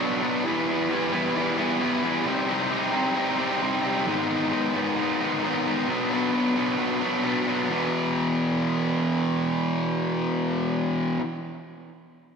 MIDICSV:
0, 0, Header, 1, 2, 480
1, 0, Start_track
1, 0, Key_signature, 1, "minor"
1, 0, Tempo, 452830
1, 471, Time_signature, 4, 2, 24, 8
1, 13101, End_track
2, 0, Start_track
2, 0, Title_t, "Distorted electric guitar"
2, 0, Program_c, 0, 30
2, 0, Note_on_c, 0, 47, 79
2, 1, Note_on_c, 0, 54, 88
2, 6, Note_on_c, 0, 59, 82
2, 12, Note_on_c, 0, 62, 82
2, 214, Note_off_c, 0, 62, 0
2, 225, Note_off_c, 0, 59, 0
2, 227, Note_on_c, 0, 62, 75
2, 231, Note_off_c, 0, 54, 0
2, 238, Note_on_c, 0, 59, 66
2, 244, Note_on_c, 0, 54, 64
2, 455, Note_off_c, 0, 62, 0
2, 458, Note_off_c, 0, 47, 0
2, 460, Note_off_c, 0, 59, 0
2, 463, Note_off_c, 0, 54, 0
2, 468, Note_on_c, 0, 52, 101
2, 473, Note_on_c, 0, 55, 86
2, 484, Note_on_c, 0, 59, 90
2, 487, Note_on_c, 0, 64, 100
2, 700, Note_off_c, 0, 64, 0
2, 712, Note_on_c, 0, 64, 87
2, 715, Note_off_c, 0, 59, 0
2, 728, Note_on_c, 0, 59, 81
2, 733, Note_off_c, 0, 55, 0
2, 737, Note_on_c, 0, 55, 65
2, 938, Note_off_c, 0, 52, 0
2, 951, Note_on_c, 0, 52, 84
2, 955, Note_off_c, 0, 59, 0
2, 956, Note_off_c, 0, 55, 0
2, 960, Note_on_c, 0, 55, 86
2, 962, Note_off_c, 0, 64, 0
2, 968, Note_on_c, 0, 59, 94
2, 974, Note_on_c, 0, 64, 94
2, 1170, Note_off_c, 0, 64, 0
2, 1181, Note_off_c, 0, 59, 0
2, 1183, Note_on_c, 0, 64, 85
2, 1194, Note_off_c, 0, 52, 0
2, 1194, Note_off_c, 0, 55, 0
2, 1194, Note_on_c, 0, 59, 95
2, 1199, Note_on_c, 0, 55, 83
2, 1206, Note_on_c, 0, 52, 75
2, 1416, Note_off_c, 0, 52, 0
2, 1427, Note_off_c, 0, 55, 0
2, 1428, Note_on_c, 0, 52, 72
2, 1431, Note_off_c, 0, 59, 0
2, 1436, Note_off_c, 0, 64, 0
2, 1440, Note_on_c, 0, 55, 80
2, 1444, Note_on_c, 0, 59, 78
2, 1449, Note_on_c, 0, 64, 91
2, 1655, Note_off_c, 0, 64, 0
2, 1659, Note_off_c, 0, 59, 0
2, 1667, Note_on_c, 0, 64, 92
2, 1668, Note_off_c, 0, 55, 0
2, 1672, Note_off_c, 0, 52, 0
2, 1672, Note_on_c, 0, 59, 86
2, 1681, Note_on_c, 0, 55, 75
2, 1685, Note_on_c, 0, 52, 72
2, 1898, Note_off_c, 0, 52, 0
2, 1907, Note_off_c, 0, 55, 0
2, 1911, Note_on_c, 0, 52, 84
2, 1913, Note_off_c, 0, 59, 0
2, 1916, Note_off_c, 0, 64, 0
2, 1920, Note_on_c, 0, 55, 84
2, 1925, Note_on_c, 0, 59, 85
2, 1929, Note_on_c, 0, 64, 92
2, 2134, Note_off_c, 0, 64, 0
2, 2143, Note_off_c, 0, 59, 0
2, 2147, Note_on_c, 0, 64, 83
2, 2152, Note_off_c, 0, 55, 0
2, 2156, Note_on_c, 0, 59, 68
2, 2164, Note_on_c, 0, 55, 61
2, 2376, Note_off_c, 0, 64, 0
2, 2378, Note_off_c, 0, 52, 0
2, 2381, Note_off_c, 0, 59, 0
2, 2382, Note_off_c, 0, 55, 0
2, 2383, Note_on_c, 0, 48, 97
2, 2394, Note_on_c, 0, 55, 90
2, 2403, Note_on_c, 0, 60, 94
2, 2408, Note_on_c, 0, 63, 102
2, 2625, Note_off_c, 0, 63, 0
2, 2628, Note_off_c, 0, 60, 0
2, 2629, Note_on_c, 0, 63, 85
2, 2636, Note_off_c, 0, 55, 0
2, 2640, Note_on_c, 0, 60, 69
2, 2649, Note_on_c, 0, 55, 64
2, 2856, Note_off_c, 0, 48, 0
2, 2868, Note_off_c, 0, 55, 0
2, 2869, Note_on_c, 0, 48, 91
2, 2871, Note_off_c, 0, 60, 0
2, 2881, Note_on_c, 0, 55, 93
2, 2884, Note_on_c, 0, 60, 90
2, 2888, Note_off_c, 0, 63, 0
2, 2892, Note_on_c, 0, 63, 105
2, 3105, Note_off_c, 0, 60, 0
2, 3106, Note_off_c, 0, 63, 0
2, 3110, Note_on_c, 0, 63, 105
2, 3112, Note_off_c, 0, 55, 0
2, 3113, Note_off_c, 0, 48, 0
2, 3118, Note_on_c, 0, 60, 92
2, 3124, Note_on_c, 0, 55, 88
2, 3126, Note_on_c, 0, 48, 77
2, 3333, Note_off_c, 0, 48, 0
2, 3338, Note_off_c, 0, 55, 0
2, 3345, Note_on_c, 0, 48, 81
2, 3347, Note_off_c, 0, 60, 0
2, 3351, Note_on_c, 0, 55, 78
2, 3354, Note_off_c, 0, 63, 0
2, 3360, Note_on_c, 0, 60, 77
2, 3367, Note_on_c, 0, 63, 86
2, 3575, Note_off_c, 0, 63, 0
2, 3582, Note_off_c, 0, 60, 0
2, 3588, Note_on_c, 0, 63, 81
2, 3589, Note_off_c, 0, 55, 0
2, 3594, Note_on_c, 0, 60, 86
2, 3596, Note_off_c, 0, 48, 0
2, 3602, Note_on_c, 0, 55, 87
2, 3608, Note_on_c, 0, 48, 71
2, 3819, Note_off_c, 0, 48, 0
2, 3826, Note_off_c, 0, 55, 0
2, 3831, Note_off_c, 0, 60, 0
2, 3832, Note_on_c, 0, 48, 81
2, 3838, Note_on_c, 0, 55, 85
2, 3840, Note_off_c, 0, 63, 0
2, 3844, Note_on_c, 0, 60, 83
2, 3853, Note_on_c, 0, 63, 93
2, 4055, Note_off_c, 0, 63, 0
2, 4066, Note_off_c, 0, 60, 0
2, 4067, Note_on_c, 0, 63, 84
2, 4077, Note_off_c, 0, 55, 0
2, 4079, Note_on_c, 0, 60, 72
2, 4089, Note_on_c, 0, 55, 60
2, 4297, Note_off_c, 0, 63, 0
2, 4299, Note_off_c, 0, 48, 0
2, 4302, Note_off_c, 0, 60, 0
2, 4308, Note_off_c, 0, 55, 0
2, 4308, Note_on_c, 0, 44, 85
2, 4311, Note_on_c, 0, 51, 93
2, 4319, Note_on_c, 0, 59, 102
2, 4320, Note_on_c, 0, 56, 100
2, 4325, Note_on_c, 0, 63, 106
2, 4530, Note_off_c, 0, 63, 0
2, 4543, Note_on_c, 0, 63, 93
2, 4546, Note_off_c, 0, 59, 0
2, 4548, Note_off_c, 0, 56, 0
2, 4550, Note_on_c, 0, 59, 82
2, 4561, Note_on_c, 0, 56, 68
2, 4774, Note_off_c, 0, 51, 0
2, 4777, Note_off_c, 0, 56, 0
2, 4787, Note_off_c, 0, 63, 0
2, 4787, Note_on_c, 0, 51, 90
2, 4790, Note_on_c, 0, 56, 93
2, 4791, Note_off_c, 0, 44, 0
2, 4795, Note_off_c, 0, 59, 0
2, 4800, Note_on_c, 0, 59, 96
2, 4800, Note_on_c, 0, 63, 106
2, 5013, Note_off_c, 0, 63, 0
2, 5021, Note_off_c, 0, 56, 0
2, 5025, Note_on_c, 0, 63, 97
2, 5026, Note_off_c, 0, 59, 0
2, 5030, Note_off_c, 0, 51, 0
2, 5030, Note_on_c, 0, 59, 90
2, 5034, Note_on_c, 0, 56, 84
2, 5042, Note_on_c, 0, 51, 80
2, 5046, Note_on_c, 0, 44, 74
2, 5251, Note_off_c, 0, 51, 0
2, 5262, Note_off_c, 0, 56, 0
2, 5264, Note_on_c, 0, 51, 78
2, 5275, Note_off_c, 0, 63, 0
2, 5275, Note_on_c, 0, 56, 84
2, 5276, Note_off_c, 0, 59, 0
2, 5281, Note_on_c, 0, 59, 75
2, 5288, Note_on_c, 0, 63, 79
2, 5497, Note_off_c, 0, 63, 0
2, 5506, Note_off_c, 0, 56, 0
2, 5509, Note_on_c, 0, 63, 87
2, 5510, Note_off_c, 0, 51, 0
2, 5510, Note_off_c, 0, 59, 0
2, 5514, Note_off_c, 0, 44, 0
2, 5514, Note_on_c, 0, 59, 87
2, 5519, Note_on_c, 0, 56, 87
2, 5523, Note_on_c, 0, 51, 75
2, 5527, Note_on_c, 0, 44, 75
2, 5738, Note_off_c, 0, 51, 0
2, 5742, Note_off_c, 0, 56, 0
2, 5751, Note_on_c, 0, 51, 78
2, 5755, Note_on_c, 0, 56, 84
2, 5757, Note_off_c, 0, 63, 0
2, 5760, Note_off_c, 0, 59, 0
2, 5764, Note_on_c, 0, 59, 94
2, 5769, Note_on_c, 0, 63, 86
2, 5983, Note_off_c, 0, 63, 0
2, 5996, Note_on_c, 0, 63, 82
2, 6000, Note_off_c, 0, 44, 0
2, 6004, Note_off_c, 0, 59, 0
2, 6005, Note_off_c, 0, 56, 0
2, 6008, Note_on_c, 0, 59, 74
2, 6018, Note_on_c, 0, 56, 59
2, 6217, Note_off_c, 0, 51, 0
2, 6220, Note_off_c, 0, 63, 0
2, 6231, Note_off_c, 0, 56, 0
2, 6231, Note_on_c, 0, 47, 90
2, 6240, Note_on_c, 0, 54, 88
2, 6243, Note_off_c, 0, 59, 0
2, 6248, Note_on_c, 0, 59, 107
2, 6251, Note_on_c, 0, 62, 103
2, 6461, Note_off_c, 0, 62, 0
2, 6473, Note_on_c, 0, 62, 82
2, 6476, Note_off_c, 0, 59, 0
2, 6481, Note_off_c, 0, 54, 0
2, 6489, Note_on_c, 0, 59, 76
2, 6494, Note_on_c, 0, 54, 68
2, 6699, Note_off_c, 0, 47, 0
2, 6711, Note_off_c, 0, 54, 0
2, 6712, Note_off_c, 0, 59, 0
2, 6712, Note_on_c, 0, 47, 89
2, 6721, Note_off_c, 0, 62, 0
2, 6724, Note_on_c, 0, 54, 84
2, 6725, Note_on_c, 0, 59, 88
2, 6733, Note_on_c, 0, 62, 91
2, 6938, Note_off_c, 0, 62, 0
2, 6943, Note_off_c, 0, 59, 0
2, 6947, Note_off_c, 0, 54, 0
2, 6950, Note_on_c, 0, 62, 82
2, 6953, Note_off_c, 0, 47, 0
2, 6956, Note_on_c, 0, 59, 92
2, 6960, Note_on_c, 0, 54, 88
2, 6966, Note_on_c, 0, 47, 84
2, 7167, Note_off_c, 0, 47, 0
2, 7179, Note_off_c, 0, 54, 0
2, 7180, Note_on_c, 0, 47, 80
2, 7185, Note_off_c, 0, 59, 0
2, 7189, Note_off_c, 0, 62, 0
2, 7191, Note_on_c, 0, 54, 74
2, 7198, Note_on_c, 0, 59, 85
2, 7202, Note_on_c, 0, 62, 80
2, 7413, Note_off_c, 0, 62, 0
2, 7420, Note_off_c, 0, 59, 0
2, 7423, Note_off_c, 0, 54, 0
2, 7426, Note_on_c, 0, 62, 97
2, 7432, Note_off_c, 0, 47, 0
2, 7433, Note_on_c, 0, 59, 87
2, 7435, Note_on_c, 0, 54, 74
2, 7444, Note_on_c, 0, 47, 70
2, 7652, Note_off_c, 0, 47, 0
2, 7661, Note_off_c, 0, 54, 0
2, 7665, Note_on_c, 0, 47, 86
2, 7666, Note_off_c, 0, 59, 0
2, 7672, Note_off_c, 0, 62, 0
2, 7674, Note_on_c, 0, 54, 76
2, 7679, Note_on_c, 0, 59, 81
2, 7684, Note_on_c, 0, 62, 91
2, 7895, Note_off_c, 0, 62, 0
2, 7908, Note_on_c, 0, 62, 80
2, 7910, Note_off_c, 0, 59, 0
2, 7920, Note_off_c, 0, 54, 0
2, 7922, Note_on_c, 0, 59, 72
2, 7933, Note_on_c, 0, 54, 57
2, 8133, Note_off_c, 0, 47, 0
2, 8134, Note_off_c, 0, 62, 0
2, 8140, Note_on_c, 0, 40, 87
2, 8142, Note_off_c, 0, 59, 0
2, 8147, Note_off_c, 0, 54, 0
2, 8163, Note_on_c, 0, 47, 112
2, 8181, Note_on_c, 0, 52, 110
2, 11850, Note_off_c, 0, 40, 0
2, 11873, Note_off_c, 0, 47, 0
2, 11891, Note_off_c, 0, 52, 0
2, 13101, End_track
0, 0, End_of_file